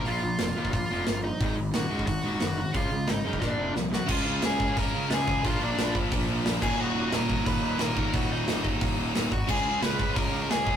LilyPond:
<<
  \new Staff \with { instrumentName = "Lead electric guitar" } { \time 4/4 \key ees \minor \tempo 4 = 178 <f' f''>2 <f' f''>4. <ees' ees''>8~ | <ees' ees''>8 r8 <ges' ges''>4 <ges' ges''>2 | <f' f''>4 <ees' ees''>4 <d' d''>4 r8 <ges' ges''>8 | <f' f''>4 <aes' aes''>4 <bes' bes''>4 <aes' aes''>4 |
<f' f''>8 <d' d''>4 r2 <aes' aes''>8 | <ges' ges''>4 <bes' bes''>4 <ces'' ces'''>4 <bes' bes''>4 | <ges' ges''>8 <ees' ees''>4 r2 <ges' ges''>8 | <aes' aes''>4 <ces'' ces'''>4 <bes' bes''>4 <aes' aes''>4 | }
  \new Staff \with { instrumentName = "Distorted electric guitar" } { \clef bass \time 4/4 \key ees \minor r1 | r1 | r1 | <des aes des' f' aes'>2.~ <des aes des' f' aes'>8 <des aes des' f' aes'>8 |
<bes, f bes d' f'>2.~ <bes, f bes d' f'>8 <ees, bes, ees ges bes ees'>8~ | <ees, bes, ees ges bes ees'>2. <ees, bes, ees ges bes ees'>8 <ees, bes, ees ges bes ees'>8~ | <ees, bes, ees ges bes ees'>2. <ees, bes, ees ges bes ees'>8 r8 | <des aes des' f' aes'>2.~ <des aes des' f' aes'>8 <des aes des' f' aes'>8 | }
  \new Staff \with { instrumentName = "Distorted electric guitar" } { \clef bass \time 4/4 \key ees \minor <bes, f bes>8 <bes, f>8 <bes, f>8 <bes, f bes>8 <bes, f>8 <bes, f bes>8 <bes, f>8 <bes, f>8 | <aes, ees aes>8 <aes, ees>8 <aes, ees>8 <aes, ees aes>8 <aes, ees>8 <aes, ees aes>8 <aes, ees>8 <aes, ees>8 | <des aes des'>8 <des aes>8 <des aes>8 <des aes des'>8 <bes, f bes>8 <bes, f bes>8 <bes, f>8 <bes, f>8 | <des aes des'>1 |
<bes, f bes>2.~ <bes, f bes>8 <ees, bes, ees>8~ | <ees, bes, ees>2.~ <ees, bes, ees>8 <ees, bes, ees>8~ | <ees, bes, ees>2.~ <ees, bes, ees>8 r8 | <des aes des'>1 | }
  \new Staff \with { instrumentName = "Overdriven electric guitar" } { \clef bass \time 4/4 \key ees \minor <bes, f bes>8 <bes, f>8 <bes, f>8 <bes, f bes>8 <bes, f>8 <bes, f bes>8 <bes, f>8 <bes, f>8 | <aes, ees aes>8 <aes, ees>8 <aes, ees>8 <aes, ees aes>8 <aes, ees>8 <aes, ees aes>8 <aes, ees>8 <aes, ees>8 | <des aes des'>8 <des aes>8 <des aes>8 <des aes des'>8 <bes, f bes>8 <bes, f bes>8 <bes, f>8 <bes, f>8 | <des aes des'>2 <des aes des'>2 |
<bes, f bes>2 <bes, f bes>4. <ees, bes, ees>8~ | <ees, bes, ees>4. <ees, bes, ees>2 <ees, bes, ees>8~ | <ees, bes, ees>4. <ees, bes, ees>2 r8 | <des aes des'>2 <des aes des'>2 | }
  \new Staff \with { instrumentName = "Picked electric bass" } { \clef bass \time 4/4 \key ees \minor bes,,8 bes,,8 f,,8 ees,8 bes,,8 f,,8 g,,4 | aes,,8 aes,,8 ees,,8 des,8 aes,,8 ees,,8 ges,,4 | des,8 des,8 aes,,8 ges,8 bes,,8 f,,8 c,4 | des,8 des,8 des,4 des,8 des8 des,4 |
bes,,8 bes,,8 bes,,4 bes,,8 bes,,8 bes,,8 ees,,8 | ees,,8 ees,,8 ees,,4 ees,,8 ees,8 ees,,4 | ees,,8 ees,,8 ees,,4 ees,,8 ees,,8 ees,,8 aes,,8 | des,8 des,8 des,4 des,8 des,8 des,4 | }
  \new DrumStaff \with { instrumentName = "Drums" } \drummode { \time 4/4 hho4 <hho sn>8. bd16 <hho bd>4 <hho sn>4 | <hho bd>4 <hho sn>8. bd16 <hho bd>4 <hho sn>4 | <hho bd>4 <hho sn>8. bd16 <bd sn>4 sn8 sn8 | <cymc bd>4 <hho sn>8 bd8 <hho bd>4 <hho sn>8 bd8 |
<hho bd>4 <hho sn>8 bd8 <hho bd>4 <hho sn>8 <cymc bd>8 | r4 <hho sn>8 bd8 <hho bd>4 <hho sn>8 bd8 | <hho bd>4 <hho sn>8 bd8 <hho bd>4 <hho sn>8 bd8 | <cymc bd>4 <hho sn>8 bd8 <hho bd>4 <hho sn>8 bd8 | }
>>